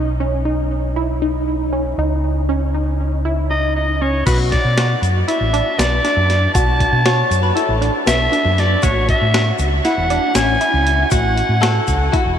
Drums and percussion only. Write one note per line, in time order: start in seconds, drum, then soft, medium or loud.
4.27 kick loud
4.27 closed hi-hat medium
4.27 crash medium
4.27 shaker soft
4.52 kick medium
4.52 snare soft
4.52 closed hi-hat medium
4.78 snare loud
4.78 closed hi-hat medium
5.03 closed hi-hat medium
5.03 shaker soft
5.28 closed hi-hat medium
5.54 closed hi-hat medium
5.79 snare medium
5.79 closed hi-hat medium
5.79 shaker medium
6.05 snare soft
6.05 closed hi-hat medium
6.05 shaker soft
6.30 snare soft
6.30 closed hi-hat medium
6.55 kick loud
6.55 closed hi-hat medium
6.55 shaker soft
6.80 kick medium
6.80 closed hi-hat medium
7.06 snare medium
7.06 closed hi-hat medium
7.31 closed hi-hat medium
7.31 shaker soft
7.57 closed hi-hat medium
7.82 closed hi-hat medium
8.07 snare loud
8.07 closed hi-hat medium
8.07 shaker medium
8.33 closed hi-hat medium
8.33 shaker soft
8.58 snare soft
8.58 closed hi-hat medium
8.82 kick loud
8.82 closed hi-hat medium
8.82 shaker medium
9.09 kick medium
9.09 closed hi-hat medium
9.34 snare loud
9.34 closed hi-hat medium
9.59 closed hi-hat medium
9.59 shaker soft
9.85 snare soft
9.85 closed hi-hat medium
10.10 closed hi-hat medium
10.35 snare medium
10.35 closed hi-hat medium
10.35 shaker medium
10.61 closed hi-hat medium
10.61 shaker soft
10.87 closed hi-hat medium
11.11 kick loud
11.11 closed hi-hat medium
11.11 shaker medium
11.38 closed hi-hat medium
11.63 snare loud
11.63 closed hi-hat medium
11.87 kick medium
11.87 closed hi-hat medium
11.87 shaker soft
12.13 kick medium
12.13 closed hi-hat medium